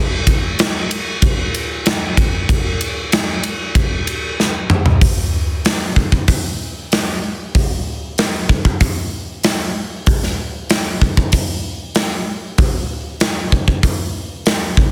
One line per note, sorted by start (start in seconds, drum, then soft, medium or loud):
0.27 kick medium
0.27 ride medium
0.59 snare loud
0.59 ride loud
0.91 ride medium
1.22 kick loud
1.22 ride loud
1.54 ride medium
1.86 snare loud
1.86 ride loud
2.17 kick medium
2.17 ride medium
2.49 kick loud
2.49 ride loud
2.81 ride medium
3.12 snare loud
3.12 ride loud
3.44 ride medium
3.75 kick loud
3.75 ride loud
4.07 ride medium
4.40 snare medium
4.70 mid tom loud
4.86 floor tom loud
5.01 kick loud
5.01 open hi-hat medium
5.65 snare loud
5.65 open hi-hat medium
5.96 kick medium
6.12 kick medium
6.28 kick loud
6.28 open hi-hat medium
6.92 snare loud
6.92 open hi-hat medium
7.55 kick loud
7.55 open hi-hat medium
8.18 snare loud
8.18 open hi-hat medium
8.49 kick medium
8.65 kick medium
8.80 kick loud
8.80 open hi-hat medium
9.43 snare loud
9.43 open hi-hat medium
10.06 kick loud
10.06 open hi-hat medium
10.23 snare soft
10.70 snare loud
10.70 open hi-hat medium
11.02 kick medium
11.17 kick medium
11.32 kick medium
11.32 open hi-hat medium
11.95 snare loud
11.95 open hi-hat soft
12.58 kick loud
12.58 open hi-hat medium
13.20 snare loud
13.20 open hi-hat medium
13.52 kick medium
13.68 kick medium
13.83 kick loud
13.83 open hi-hat medium
14.46 snare loud
14.46 open hi-hat medium
14.77 kick medium